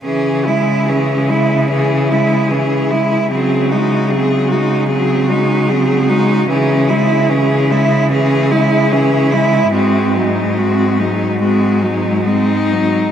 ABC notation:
X:1
M:4/4
L:1/16
Q:1/4=74
K:C#m
V:1 name="Cello"
G2 E2 G2 E2 G2 E2 G2 E2 | G2 F2 G2 F2 G2 F2 G2 F2 | G2 E2 G2 E2 G2 E2 G2 E2 | F2 D2 F2 D2 F2 D2 D4 |]
V:2 name="Cello"
C2 E2 C2 E2 C2 E2 C2 E2 | ^B,2 D2 B,2 D2 B,2 D2 B,2 D2 | C2 E2 C2 E2 C2 E2 C2 E2 | ^B,2 G,2 B,2 G,2 B,2 G,2 B,2 G,2 |]
V:3 name="Cello" clef=bass
E,2 G,2 E,2 G,2 E,2 G,2 E,2 G,2 | F,2 G,2 F,2 G,2 F,2 G,2 F,2 G,2 | E,2 G,2 E,2 G,2 E,2 G,2 E,2 G,2 | G,2 F,2 G,2 F,2 G,2 F,2 G,2 F,2 |]
V:4 name="Cello" clef=bass
C,16 | C,16 | C,16 | G,,12- G,,3 z |]